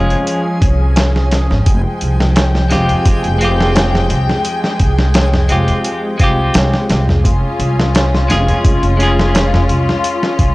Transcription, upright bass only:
0, 0, Header, 1, 2, 480
1, 0, Start_track
1, 0, Key_signature, -4, "minor"
1, 0, Tempo, 697674
1, 1148, Time_signature, 4, 2, 24, 8
1, 7256, End_track
2, 0, Start_track
2, 0, Title_t, "Upright bass"
2, 0, Program_c, 0, 32
2, 0, Note_on_c, 0, 29, 100
2, 76, Note_on_c, 0, 41, 79
2, 86, Note_off_c, 0, 29, 0
2, 175, Note_off_c, 0, 41, 0
2, 427, Note_on_c, 0, 36, 95
2, 1009, Note_off_c, 0, 36, 0
2, 1035, Note_on_c, 0, 32, 94
2, 1135, Note_off_c, 0, 32, 0
2, 1147, Note_on_c, 0, 29, 93
2, 1258, Note_off_c, 0, 29, 0
2, 1390, Note_on_c, 0, 36, 88
2, 1847, Note_off_c, 0, 36, 0
2, 1871, Note_on_c, 0, 29, 97
2, 1997, Note_on_c, 0, 41, 77
2, 2007, Note_off_c, 0, 29, 0
2, 2095, Note_off_c, 0, 41, 0
2, 2105, Note_on_c, 0, 29, 76
2, 2217, Note_off_c, 0, 29, 0
2, 2239, Note_on_c, 0, 29, 88
2, 2808, Note_off_c, 0, 29, 0
2, 2829, Note_on_c, 0, 36, 96
2, 2939, Note_off_c, 0, 36, 0
2, 3303, Note_on_c, 0, 36, 96
2, 3763, Note_off_c, 0, 36, 0
2, 3784, Note_on_c, 0, 29, 100
2, 3911, Note_on_c, 0, 41, 85
2, 3921, Note_off_c, 0, 29, 0
2, 4012, Note_off_c, 0, 41, 0
2, 4268, Note_on_c, 0, 36, 78
2, 4480, Note_off_c, 0, 36, 0
2, 4505, Note_on_c, 0, 36, 103
2, 4617, Note_off_c, 0, 36, 0
2, 4744, Note_on_c, 0, 36, 97
2, 4959, Note_off_c, 0, 36, 0
2, 4989, Note_on_c, 0, 29, 95
2, 5099, Note_off_c, 0, 29, 0
2, 5224, Note_on_c, 0, 36, 95
2, 5684, Note_off_c, 0, 36, 0
2, 5709, Note_on_c, 0, 29, 100
2, 5833, Note_on_c, 0, 41, 80
2, 5844, Note_off_c, 0, 29, 0
2, 5934, Note_off_c, 0, 41, 0
2, 5949, Note_on_c, 0, 29, 87
2, 6059, Note_off_c, 0, 29, 0
2, 6073, Note_on_c, 0, 29, 90
2, 6645, Note_off_c, 0, 29, 0
2, 6670, Note_on_c, 0, 36, 93
2, 6780, Note_off_c, 0, 36, 0
2, 7152, Note_on_c, 0, 36, 91
2, 7256, Note_off_c, 0, 36, 0
2, 7256, End_track
0, 0, End_of_file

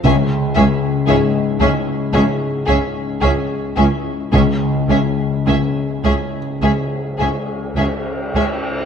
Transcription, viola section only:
0, 0, Header, 1, 2, 480
1, 0, Start_track
1, 0, Tempo, 1056338
1, 20, Time_signature, 4, 2, 24, 8
1, 1461, Tempo, 1125704
1, 2421, Tempo, 1151631
1, 3832, End_track
2, 0, Start_track
2, 0, Title_t, "Viola section"
2, 0, Program_c, 0, 48
2, 21, Note_on_c, 0, 61, 50
2, 57, Note_off_c, 0, 61, 0
2, 256, Note_on_c, 0, 61, 48
2, 292, Note_off_c, 0, 61, 0
2, 492, Note_on_c, 0, 61, 54
2, 529, Note_off_c, 0, 61, 0
2, 732, Note_on_c, 0, 61, 53
2, 769, Note_off_c, 0, 61, 0
2, 975, Note_on_c, 0, 61, 54
2, 1011, Note_off_c, 0, 61, 0
2, 1219, Note_on_c, 0, 61, 46
2, 1255, Note_off_c, 0, 61, 0
2, 1463, Note_on_c, 0, 61, 49
2, 1497, Note_off_c, 0, 61, 0
2, 1697, Note_on_c, 0, 61, 48
2, 1731, Note_off_c, 0, 61, 0
2, 1939, Note_on_c, 0, 61, 47
2, 1973, Note_off_c, 0, 61, 0
2, 2178, Note_on_c, 0, 61, 36
2, 2212, Note_off_c, 0, 61, 0
2, 2422, Note_on_c, 0, 61, 44
2, 2455, Note_off_c, 0, 61, 0
2, 2664, Note_on_c, 0, 61, 34
2, 2697, Note_off_c, 0, 61, 0
2, 2903, Note_on_c, 0, 61, 39
2, 2937, Note_off_c, 0, 61, 0
2, 3145, Note_on_c, 0, 61, 35
2, 3178, Note_off_c, 0, 61, 0
2, 3386, Note_on_c, 0, 61, 36
2, 3420, Note_off_c, 0, 61, 0
2, 3625, Note_on_c, 0, 61, 38
2, 3659, Note_off_c, 0, 61, 0
2, 3832, End_track
0, 0, End_of_file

